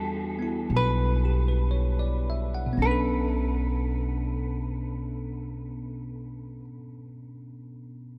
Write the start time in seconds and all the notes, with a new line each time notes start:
Already playing: E2 G3 B3 D4 F#4 A4
0.30 G4
0.39 B3 E4
0.70 B1
0.76 B4
1.25 G4
1.48 B4
1.71 C#5
1.99 D5
2.30 E5
2.55 F#5
2.66 B2
2.73 B3
2.77 B1 C#4
2.82 D4 B4
2.91 A4